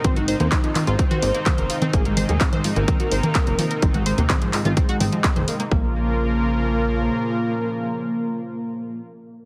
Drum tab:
HH |xxoxxxoxxxoxxxox|xxoxxxoxxxoxxxox|xxoxxxoxxxoxxxox|----------------|
CP |----x-x-----x---|----x-------x---|----x-x-----x---|----------------|
CG |O--O--O--O--O--O|--O--O--O--O--O-|-O--O--O--O--O--|----------------|
BD |o---o---o---o---|o---o---o---o---|o---o---o---o---|o---------------|

HH |----------------|
CP |----------------|
CG |----------------|
BD |----------------|